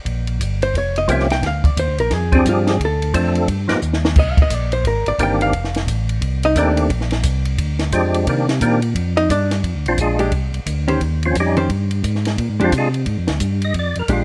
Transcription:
0.05 tonewheel organ A#1, kick, ride
0.27 ride
0.40 tonewheel organ G1, kick, hi-hat pedal, ride
0.62 hollow-body jazz guitar C5, ride
0.74 tonewheel organ F1, hollow-body jazz guitar C#5, kick, ride
0.96 hollow-body jazz guitar D#5, ride
1.08 tonewheel organ C2 F3 A#3 C4 C#4 G4, hollow-body jazz guitar E5, kick, hi-hat pedal, ride
1.20 snare
1.30 hollow-body jazz guitar G5, snare, ride
1.43 tonewheel organ D2, hollow-body jazz guitar F5, kick, snare, ride
1.64 tonewheel organ D2, hollow-body jazz guitar D5, kick, ride
1.77 tonewheel organ D#2, hollow-body jazz guitar C5, kick, hi-hat pedal, ride
1.88 tonewheel organ D2
1.98 tonewheel organ A#1, hollow-body jazz guitar A#4, ride
2.11 tonewheel organ F2, hollow-body jazz guitar G#4, kick, snare, ride
2.32 tonewheel organ F3 C4 D4 G4 G#4, hollow-body jazz guitar C4, kick, ride
2.45 tonewheel organ G2, hollow-body jazz guitar F4, kick, hi-hat pedal, ride
2.67 hollow-body jazz guitar G#4, snare, ride
2.80 tonewheel organ D2, kick, ride
2.85 hollow-body jazz guitar A4
3.02 ride
3.14 tonewheel organ F2 F3 A3 C4 D4 A4, kick, hi-hat pedal, ride
3.35 ride
3.48 tonewheel organ G2, kick, ride
3.68 tonewheel organ G2 F3 A#3 B3 D#4 G4, snare, ride
3.82 tonewheel organ D#2, hi-hat pedal
3.93 snare
4.05 snare
4.16 tonewheel organ C2, hollow-body jazz guitar D#5, kick, crash
4.31 hollow-body jazz guitar F5
4.37 tonewheel organ C2, kick, ride
4.42 hollow-body jazz guitar D#5
4.50 tonewheel organ A#1, hollow-body jazz guitar D5, kick, hi-hat pedal, ride
4.72 hollow-body jazz guitar C5, ride
4.84 tonewheel organ G#1, hollow-body jazz guitar A#4, kick, ride
5.06 tonewheel organ G#1, hollow-body jazz guitar D5, ride
5.19 tonewheel organ G1 D#3 A#3 C4 D4 G4, kick, hi-hat pedal, ride
5.23 hollow-body jazz guitar G5
5.41 hollow-body jazz guitar F5, ride
5.53 tonewheel organ F1, kick, ride
5.64 snare
5.74 snare, ride
5.87 tonewheel organ A1, kick, hi-hat pedal, ride
6.09 ride
6.21 tonewheel organ C2, kick, ride
6.43 hollow-body jazz guitar D#4 D#5, ride
6.56 tonewheel organ D#2 D#3 A3 C4 D4 G4, hollow-body jazz guitar D4 D5, kick, hi-hat pedal, ride
6.77 ride
6.90 tonewheel organ A#1, kick, ride
7.01 snare
7.11 snare, ride
7.23 tonewheel organ C2, kick, hi-hat pedal, ride
7.45 ride
7.58 tonewheel organ D2, kick, ride
7.79 snare, ride
7.92 tonewheel organ F2 F3 G#3 C4 D4 G4, kick, hi-hat pedal, ride
8.14 ride
8.27 tonewheel organ C3 D#3 A#3 C4 D4 G4, kick, ride
8.49 snare, ride
8.61 tonewheel organ A#2 D#3 A#3 C4 D4 G4, kick, hi-hat pedal, ride
8.82 ride
8.95 tonewheel organ F2, kick, ride
9.17 hollow-body jazz guitar D#4 D#5, ride
9.29 tonewheel organ G2, hollow-body jazz guitar D4 D5, kick, hi-hat pedal, ride
9.51 snare, ride
9.64 tonewheel organ F2, kick, ride
9.76 tonewheel organ D2
9.86 tonewheel organ A#1 F3 C4 D4 F4, ride
9.98 tonewheel organ A#1 G#3 D4 F4 G#4, kick, hi-hat pedal, ride
10.19 hollow-body jazz guitar G#3 D4 G4, ride
10.32 tonewheel organ C2, kick, ride
10.53 tonewheel organ C2, ride
10.66 tonewheel organ D2, kick, hi-hat pedal, ride
10.88 hollow-body jazz guitar D#3 C#4 G4 C5, ride
11.01 tonewheel organ D#2, kick, ride
11.23 tonewheel organ F3 C4 C#4 F4, ride
11.35 tonewheel organ F2, kick, hi-hat pedal, ride
11.40 tonewheel organ G3 C#4 D#4 G4
11.57 hollow-body jazz guitar D#3 C#4 G4 C5, ride
11.69 tonewheel organ G2, kick, ride
11.91 ride
12.03 tonewheel organ G#2, kick, hi-hat pedal, ride
12.15 snare
12.25 snare, ride
12.38 tonewheel organ A#2, kick, ride
12.49 tonewheel organ G#2
12.60 tonewheel organ F2 F4, hollow-body jazz guitar G#3 D4 G4, ride
12.64 tonewheel organ F3 C4 D4
12.72 tonewheel organ C3, kick, hi-hat pedal, ride
12.78 tonewheel organ G#3 D4 F4 G#4
12.94 ride
13.06 tonewheel organ G#2, kick, ride
13.18 tonewheel organ F2
13.27 tonewheel organ D2, snare, ride
13.40 tonewheel organ G2, kick, hi-hat pedal, ride
13.62 tonewheel organ D#5, ride
13.74 tonewheel organ F2, kick, ride
13.79 tonewheel organ D5
13.95 tonewheel organ F2 A#4, ride
14.08 tonewheel organ A#1, hollow-body jazz guitar G#3 D4 G4, kick, hi-hat pedal, ride
14.12 tonewheel organ F4

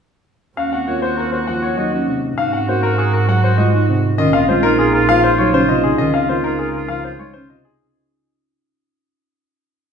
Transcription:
0.57 double bass D#2, marimba C#4, oboe F#4, grand piano F5
0.72 marimba C4, oboe F#4, grand piano F#5
0.87 grand piano A#3 C#5, marimba F4, oboe F#4
1.02 oboe F#4, grand piano C5
1.17 oboe F#4, marimba A#4, grand piano A#4
1.32 oboe F#4, grand piano C5
1.47 grand piano F3 F#5, oboe F#4
1.62 oboe F#4, grand piano C#5
1.77 grand piano F#3 D#5, marimba D#4, oboe F#4
1.93 marimba C#4, oboe F#4
2.08 grand piano C3, oboe F#4
2.38 double bass G#2, marimba D#4, oboe F#4, grand piano F5
2.53 marimba C4, oboe F#4, grand piano F#5
2.68 grand piano A#3 C5, marimba F#4, oboe F#4
2.83 oboe F#4, grand piano A#4
2.98 oboe F#4, grand piano G#4, marimba A#4
3.13 oboe F#4, grand piano A#4
3.28 grand piano F#3 F#5, oboe F#4
3.43 oboe F#4, grand piano C5
3.58 grand piano G#3 D#5, marimba F4, oboe F#4
3.73 marimba D#4, oboe F#4
3.89 grand piano C3, oboe F#4
4.18 double bass A#1, grand piano D#3 D#5, marimba C#4, oboe F4
4.33 marimba C4, oboe F4, grand piano F5
4.49 grand piano G#3 C5, marimba F4, oboe F4
4.63 marimba D#4, oboe F4, grand piano A#4
4.79 oboe F4, grand piano G#4, marimba G#4
4.93 marimba D#4, oboe F4, grand piano A#4
5.09 grand piano F3 F5, oboe F4
5.24 oboe F4, grand piano C5
5.38 grand piano F#3 C#5, marimba D#4, oboe F4
5.53 grand piano C#3 C5, marimba C#4, oboe F4
5.69 grand piano C3 D#5, marimba F4, oboe F4
5.83 marimba D#4, grand piano G#4
5.98 double bass C#2, grand piano D#3 D#5, marimba C#4, oboe F4
6.14 marimba C4, oboe F4, grand piano F5
6.29 grand piano A#3 C5, marimba F4, oboe F4
6.44 marimba D#4, oboe F4, grand piano A#4
6.59 oboe F4, grand piano G#4, marimba A#4
6.74 marimba D#4, oboe F4, grand piano A#4
6.88 grand piano F3 F5, oboe F4
7.04 oboe F4, grand piano C5
7.19 grand piano G#3 C#5, oboe F4
7.34 grand piano C#3 C5, marimba C#4, oboe F4
7.50 grand piano C3 D#5, oboe F4
7.65 marimba D#4, grand piano G#4

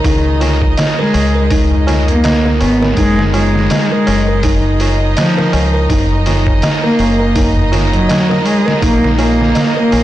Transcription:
Already playing: violin section D#4 D#5
0.04 fingered electric bass C#2, music box D#4, kick, open hi-hat, tabla na
0.25 tabla na
0.40 music box F4, snare, open hi-hat, tabla na
0.62 kick
0.77 music box D#5, snare, open hi-hat, tabla na
0.97 cello G#3, music box A#4, snare, tabla na
1.14 fingered electric bass C#2, open hi-hat, tabla na
1.34 music box A#4, tabla na
1.50 music box D#4, kick, open hi-hat, tabla na
1.71 tabla na, tabla ge
1.87 music box F4, snare, open hi-hat, tabla na
2.08 cello A#3, closed hi-hat, tabla na, tabla ge
2.24 music box D#5, snare, open hi-hat, tabla na
2.45 music box A#4, snare
2.61 fingered electric bass G#1, cello B3, open hi-hat, tabla na
2.82 music box A#4, snare, tabla na
2.97 fingered electric bass F#1, cello G#3, violin section D#4 D#5, music box D#4, kick, open hi-hat, tabla na
3.18 snare, tabla na
3.34 cello G#3, music box F4, open hi-hat, tabla na
3.54 snare, tabla na
3.70 music box D#5, snare, open hi-hat, tabla na
3.91 cello G#3, music box A#4, tabla na
4.07 fingered electric bass F#1, open hi-hat, tabla na
4.28 music box A#4, tabla na
4.43 music box D#4, kick, open hi-hat, tabla na
4.64 tabla na
4.80 music box F4, open hi-hat, tabla na
5.01 tabla na
5.17 cello F3, music box D#5, snare, open hi-hat, tabla na
5.38 music box A#4, snare
5.53 fingered electric bass C#2, open hi-hat, tabla na
5.73 music box A#4, tabla na
5.90 fingered electric bass F#1, music box D#4, kick, open hi-hat, tabla na
6.11 tabla na
6.26 music box F4, snare, open hi-hat, tabla na
6.47 kick, tabla na
6.62 music box D#5, snare, open hi-hat, tabla na
6.84 cello A#3, music box A#4, snare, tabla na
6.99 fingered electric bass F#1, open hi-hat, tabla na
7.20 music box A#4, tabla na
7.35 music box D#4, kick, open hi-hat, tabla na
7.57 tabla na, tabla ge
7.72 music box F4, snare, open hi-hat, tabla na
7.92 cello F#3, closed hi-hat, tabla na, tabla ge
8.09 music box D#5, snare, open hi-hat, tabla na
8.30 music box A#4, snare
8.46 cello G#3, open hi-hat, tabla na
8.66 music box A#4, snare, tabla na
8.82 fingered electric bass A#1, cello A#3, music box D#4, kick, open hi-hat, tabla na
9.03 snare, tabla na
9.18 cello A#3, music box F4, open hi-hat, tabla na
9.40 snare, tabla na
9.55 music box D#5, snare, open hi-hat, tabla na
9.77 cello A#3, music box A#4, tabla na
9.92 fingered electric bass A#1, open hi-hat, tabla na

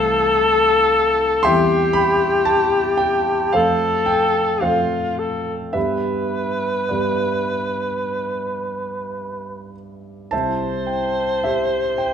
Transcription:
Already playing: grand piano C2 E3 A3 C4 A4 C5 F5, alto saxophone A4
1.43 grand piano E2 E3 G3 C4 E5 G5 C6, alto saxophone G4
1.93 grand piano B5
2.45 grand piano A5
2.97 grand piano G5
3.53 grand piano F2 A3 C4 A4 C5 F5, alto saxophone A4
4.06 grand piano G5
4.61 grand piano F2 A3 C4 A4 C5 F5, alto saxophone F4
5.19 alto saxophone A4
5.73 grand piano G2 G3 B3 D4 G4 B4 E5, alto saxophone B4
6.89 grand piano G2 G3 B3 D4 G4 B4 D5
10.31 grand piano C2 G3 C4 E4 C5 E5 A5, alto saxophone C5
10.87 grand piano G5
11.44 grand piano G4 C5 E5
11.98 grand piano G5

